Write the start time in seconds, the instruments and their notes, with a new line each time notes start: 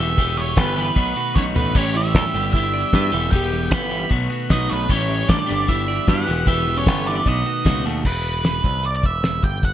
Already playing: overdriven electric guitar B3 G4
0.00 picked electric bass E1, overdriven electric guitar E2 B2 E3 G3, lead electric guitar E5
0.17 overdriven electric guitar E2 B2 E3 G3 B3 G4, kick
0.37 overdriven electric guitar E3, lead electric guitar C#5, open hi-hat
0.56 picked electric bass G1, overdriven electric guitar E3 G3 B3 G4, lead electric guitar B4, kick, snare
0.76 overdriven electric guitar E3 G3 B3 G4, open hi-hat
0.96 picked electric bass B1, overdriven electric guitar B2 D#3 A3 B3 F#4, kick
1.16 overdriven electric guitar F#4, open hi-hat
1.35 picked electric bass B1, overdriven electric guitar D#3 A3 B3 D#4 F#4, tine electric piano C#4, lead electric guitar C#5, kick, snare
1.54 picked electric bass A1, overdriven electric guitar A3 B3 F#4, tine electric piano B3, lead electric guitar B4, floor tom
1.75 picked electric bass A1, overdriven electric guitar A2 E3 G3 C#4 G4, tine electric piano C#4, lead electric guitar C#5, kick, crash
1.94 overdriven electric guitar E3, tine electric piano E4, lead electric guitar E5, open hi-hat
2.14 picked electric bass D2, overdriven electric guitar E3 G3 C#4 G4, kick, snare
2.25 snare
2.34 picked electric bass G1, overdriven electric guitar G2 D3 G3 B3 D4 G4, open hi-hat
2.53 overdriven electric guitar G2 D3 G3 B3 D4 E4 G4, tine electric piano E4, lead electric guitar E5, kick
2.74 overdriven electric guitar D5, open hi-hat
2.93 picked electric bass G2, overdriven electric guitar G3 B3 D4 G4 B4, kick, snare
3.12 picked electric bass E1, overdriven electric guitar E2 B2 E3 G3 B3 G4, open hi-hat
3.31 overdriven electric guitar E2 B2 E3 G3 B3 G4, lead electric guitar G5, kick
3.35 tine electric piano G4
3.52 overdriven electric guitar E3, open hi-hat
3.70 picked electric bass G1, overdriven electric guitar E3 G3 B3 G4, tine electric piano B4, lead electric guitar B5, kick, snare
3.82 snare
3.89 overdriven electric guitar E3 G3 B3 G4, open hi-hat
4.09 picked electric bass B1, overdriven electric guitar B2 D#3 A3 B3 F#4, kick
4.30 overdriven electric guitar F#4, open hi-hat
4.49 picked electric bass B1, overdriven electric guitar D#3 A3 B3 D#4 F#4, tine electric piano D#4, lead electric guitar D#5, kick, snare
4.68 picked electric bass B1, overdriven electric guitar A3 B3 F#4, lead electric guitar B4, open hi-hat
4.73 tine electric piano B3
4.88 picked electric bass A1, overdriven electric guitar A2 E3 G3 C#4 G4, lead electric guitar C#5, kick
4.93 tine electric piano C#4
5.09 overdriven electric guitar E3, open hi-hat
5.27 picked electric bass A1, overdriven electric guitar E3 G3 C#4 G4, lead electric guitar D5, kick, snare
5.33 tine electric piano D4
5.40 snare
5.46 overdriven electric guitar G2 D3 G3 B3 D4 G4, open hi-hat
5.51 picked electric bass G1
5.67 overdriven electric guitar G2 D3 G3 B3 D4 E4 G4, tine electric piano E4, lead electric guitar E5, kick
5.88 overdriven electric guitar D5, open hi-hat
6.07 picked electric bass G2, overdriven electric guitar G3 B3 D4 G4 B4, tine electric piano F#4, lead electric guitar F#5, kick, snare
6.26 picked electric bass E1, overdriven electric guitar E2 B2 E3 G3 B3 G4, open hi-hat
6.46 overdriven electric guitar E2 B2 E3 G3 B3 G4, tine electric piano E4, lead electric guitar E5, kick
6.67 overdriven electric guitar E3, open hi-hat
6.77 tine electric piano C#4, lead electric guitar C#5
6.86 picked electric bass G1, overdriven electric guitar E3 G3 B3 G4, kick, snare
6.97 snare
7.06 overdriven electric guitar E3 G3 B3 G4, tine electric piano D4, lead electric guitar D5, open hi-hat
7.25 picked electric bass B1, overdriven electric guitar B2 D#3 A3 B3 F#4, tine electric piano D#4, lead electric guitar D#5, kick
7.46 overdriven electric guitar F#4, open hi-hat
7.64 picked electric bass C#2, overdriven electric guitar D#3 A3 B3 D#4 F#4, kick, snare
7.84 picked electric bass D#2, overdriven electric guitar A3 B3 F#4, open hi-hat
8.05 picked electric bass E1, lead electric guitar B4, kick, crash
8.25 closed hi-hat
8.44 snare, closed hi-hat
8.64 picked electric bass C2, kick, closed hi-hat
8.83 lead electric guitar D5, closed hi-hat
8.96 lead electric guitar D5
9.03 picked electric bass E1, lead electric guitar E5, kick, closed hi-hat
9.24 snare, closed hi-hat
9.43 picked electric bass G1, lead electric guitar G5, kick, closed hi-hat
9.63 lead electric guitar F#5, kick, closed hi-hat